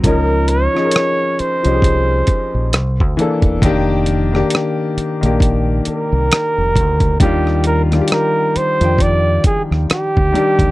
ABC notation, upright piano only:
X:1
M:4/4
L:1/16
Q:"Swing 16ths" 1/4=67
K:Eb
V:1 name="Upright piano"
[F,_DEB]2 z [F,DEAB]3 z [F,DEGA]4- [F,DEGA] z2 [=E,B,=D=A]2 | [E,B,DG]2 z [E,B,DG]3 z [E,B,DG]6 z3 | [E,G,DF]2 z [E,G,DFG]3 z [E,F,Dg]4- [E,F,Dg] z2 [E,G,DG]2 |]